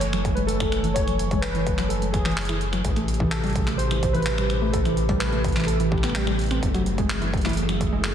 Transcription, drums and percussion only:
0.01 closed hi-hat medium
0.13 finger snap medium
0.13 closed hi-hat soft
0.25 kick loud
0.25 closed hi-hat medium
0.37 closed hi-hat soft
0.49 closed hi-hat medium
0.60 finger snap medium
0.60 kick loud
0.60 closed hi-hat soft
0.72 finger snap medium
0.72 closed hi-hat soft
0.84 closed hi-hat soft
0.96 kick loud
0.96 closed hi-hat medium
1.08 finger snap soft
1.08 closed hi-hat soft
1.19 closed hi-hat medium
1.31 kick loud
1.31 closed hi-hat soft
1.43 clap loud
1.43 closed hi-hat medium
1.55 closed hi-hat soft
1.67 kick loud
1.67 closed hi-hat medium
1.78 finger snap medium
1.78 clap medium
1.78 closed hi-hat soft
1.90 closed hi-hat medium
2.02 closed hi-hat soft
2.14 finger snap soft
2.14 kick loud
2.14 closed hi-hat medium
2.26 finger snap medium
2.26 clap medium
2.26 closed hi-hat soft
2.31 closed hi-hat soft
2.37 clap loud
2.37 closed hi-hat soft
2.41 closed hi-hat medium
2.43 closed hi-hat soft
2.45 finger snap medium
2.45 closed hi-hat medium
2.49 closed hi-hat soft
2.61 closed hi-hat soft
2.73 finger snap medium
2.73 closed hi-hat soft
2.85 kick loud
2.85 closed hi-hat medium
2.96 finger snap soft
2.96 closed hi-hat soft
3.08 closed hi-hat medium
3.14 closed hi-hat soft
3.20 kick loud
3.32 clap loud
3.32 closed hi-hat medium
3.44 closed hi-hat soft
3.47 closed hi-hat soft
3.50 closed hi-hat soft
3.53 closed hi-hat soft
3.56 kick loud
3.56 closed hi-hat medium
3.58 closed hi-hat soft
3.61 closed hi-hat soft
3.64 finger snap soft
3.64 clap medium
3.64 closed hi-hat soft
3.67 closed hi-hat soft
3.79 closed hi-hat medium
3.91 finger snap medium
3.91 closed hi-hat soft
4.03 kick loud
4.03 closed hi-hat medium
4.15 closed hi-hat soft
4.22 clap loud
4.22 closed hi-hat soft
4.26 closed hi-hat medium
4.30 closed hi-hat soft
4.38 finger snap medium
4.38 closed hi-hat soft
4.50 finger snap medium
4.50 closed hi-hat soft
4.74 kick loud
4.74 closed hi-hat medium
4.85 finger snap soft
4.85 closed hi-hat soft
4.97 closed hi-hat medium
5.09 kick loud
5.09 closed hi-hat soft
5.21 clap loud
5.21 closed hi-hat medium
5.33 closed hi-hat soft
5.44 kick loud
5.44 closed hi-hat medium
5.48 closed hi-hat soft
5.52 finger snap soft
5.52 clap medium
5.52 closed hi-hat soft
5.56 clap soft
5.56 closed hi-hat soft
5.60 clap soft
5.60 closed hi-hat soft
5.64 closed hi-hat soft
5.68 closed hi-hat medium
5.80 closed hi-hat soft
5.92 finger snap soft
5.92 kick loud
5.98 finger snap soft
6.04 finger snap medium
6.04 clap medium
6.04 closed hi-hat soft
6.10 finger snap soft
6.15 clap loud
6.15 closed hi-hat medium
6.27 finger snap medium
6.39 closed hi-hat soft
6.41 closed hi-hat soft
6.44 closed hi-hat soft
6.46 closed hi-hat soft
6.49 finger snap medium
6.49 closed hi-hat soft
6.51 closed hi-hat soft
6.63 kick loud
6.63 closed hi-hat medium
6.74 finger snap soft
6.74 closed hi-hat soft
6.86 closed hi-hat medium
6.98 kick loud
6.98 closed hi-hat soft
7.10 clap loud
7.10 closed hi-hat medium
7.22 closed hi-hat soft
7.34 kick loud
7.34 closed hi-hat soft
7.38 closed hi-hat soft
7.41 finger snap soft
7.41 clap medium
7.41 closed hi-hat soft
7.45 closed hi-hat soft
7.45 low conga medium
7.49 closed hi-hat soft
7.53 closed hi-hat medium
7.57 closed hi-hat medium
7.69 finger snap medium
7.69 closed hi-hat soft
7.81 kick loud
7.81 closed hi-hat medium
8.04 clap loud
8.04 closed hi-hat medium

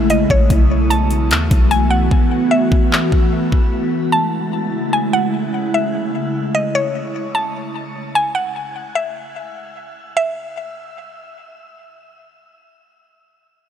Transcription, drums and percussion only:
0.10 closed hi-hat medium
0.30 kick medium
0.50 kick loud
0.50 closed hi-hat medium
0.91 closed hi-hat medium
1.11 closed hi-hat medium
1.31 clap loud
1.31 closed hi-hat medium
1.51 kick loud
1.51 closed hi-hat medium
1.71 closed hi-hat medium
2.11 kick loud
2.72 kick loud
2.93 clap loud
3.12 kick medium
3.52 kick medium

